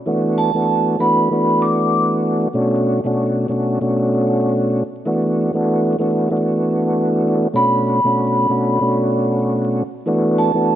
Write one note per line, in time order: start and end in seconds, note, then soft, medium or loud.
0.06 0.51 E3 loud
0.06 0.51 A3 medium
0.06 0.52 B3 medium
0.06 0.52 D4 medium
0.06 0.52 F#4 loud
0.38 0.96 A5 medium
0.54 0.96 E3 loud
0.54 0.96 A3 medium
0.54 0.97 B3 medium
0.54 0.97 D4 medium
0.54 0.97 F#4 loud
0.99 1.29 E3 loud
0.99 1.29 A3 medium
0.99 1.29 B3 medium
0.99 1.29 D4 medium
0.99 1.30 F#4 loud
0.99 1.59 B5 medium
1.30 2.47 E3 loud
1.30 2.48 A3 medium
1.30 2.48 B3 loud
1.30 2.48 D4 medium
1.30 2.48 F#4 loud
1.62 2.08 D6 medium
2.53 3.00 B2 loud
2.53 3.00 A3 medium
2.53 3.00 C#4 medium
2.53 3.01 D4 medium
2.53 3.01 F#4 loud
3.04 3.46 B2 medium
3.04 3.47 A3 medium
3.04 3.47 C#4 medium
3.04 3.47 D4 medium
3.04 3.47 F#4 loud
3.48 3.78 B2 medium
3.48 3.79 A3 medium
3.48 3.79 C#4 medium
3.48 3.79 D4 medium
3.48 3.80 F#4 loud
3.81 4.83 B2 loud
3.81 4.83 A3 medium
3.81 4.83 C#4 loud
3.81 4.84 D4 medium
3.81 4.84 F#4 loud
5.06 5.51 E3 loud
5.06 5.51 A3 medium
5.06 5.51 B3 medium
5.06 5.52 D4 medium
5.06 5.52 F#4 loud
5.54 5.96 E3 medium
5.54 5.96 A3 medium
5.54 5.96 B3 medium
5.54 5.97 D4 medium
5.54 5.97 F#4 loud
5.99 6.29 E3 medium
5.99 6.29 A3 medium
5.99 6.29 B3 medium
5.99 6.29 D4 medium
5.99 6.30 F#4 loud
6.30 7.47 E3 loud
6.30 7.47 A3 medium
6.30 7.48 B3 medium
6.30 7.48 D4 medium
6.30 7.48 F#4 loud
7.53 8.00 B2 loud
7.53 8.00 A3 medium
7.53 8.00 C#4 medium
7.53 8.01 D4 medium
7.53 8.01 F#4 loud
7.53 8.95 B5 loud
8.04 8.46 B2 medium
8.04 8.46 A3 medium
8.04 8.47 C#4 medium
8.04 8.47 D4 medium
8.04 8.47 F#4 loud
8.48 8.78 B2 medium
8.48 8.79 A3 medium
8.48 8.79 C#4 medium
8.48 8.79 D4 medium
8.48 8.80 F#4 loud
8.80 9.82 B2 loud
8.80 9.83 A3 medium
8.80 9.83 C#4 medium
8.80 9.83 D4 medium
8.80 9.84 F#4 loud
10.06 10.51 E3 medium
10.06 10.51 A3 medium
10.06 10.51 B3 medium
10.06 10.52 D4 medium
10.06 10.52 F#4 loud
10.38 10.75 A5 medium
10.54 10.75 E3 medium
10.54 10.75 A3 medium
10.54 10.75 B3 medium
10.54 10.75 D4 medium
10.54 10.75 F#4 loud